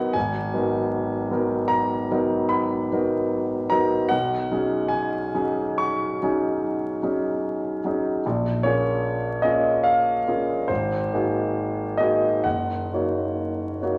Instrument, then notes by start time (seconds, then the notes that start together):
grand piano
Already playing: F#3 B3 D#4 A#4 D#5 F#5
0.13 G#1 G#5
0.54 F#3 B3 D#4 A#4
1.31 F#3 B3 D#4 A#4
1.68 A#5
2.11 F#3 B3 D#4 A#4
2.49 B5
2.92 F#3 B3 D#4 A#4
3.70 F#3 B3 D#4 A#4 A#5
4.09 B1 F#5
4.51 F#3 C#4 D#4 G#4
4.88 G#5
5.34 F#3 C#4 D#4 G#4
5.78 C#6
6.22 F#3 C#4 D#4 G#4
7.02 F#3 C#4 D#4 G#4
7.84 F#3 C#4 D#4 G#4
8.26 A#1
8.63 A#3 C#4 F4 G#4 C#5
9.42 A#3 C#4 F4 G#4 D#5
9.84 F5
10.28 A#3 C#4 F4 G#4
10.68 G#1 C5
11.13 A#3 D#4 F#4 G#4
11.97 A#3 D#4 F#4 G#4 D#5
12.44 F#1 F#5
12.93 A#3 D#4 F#4 C#5
13.82 A#3 D#4 F#4 C#5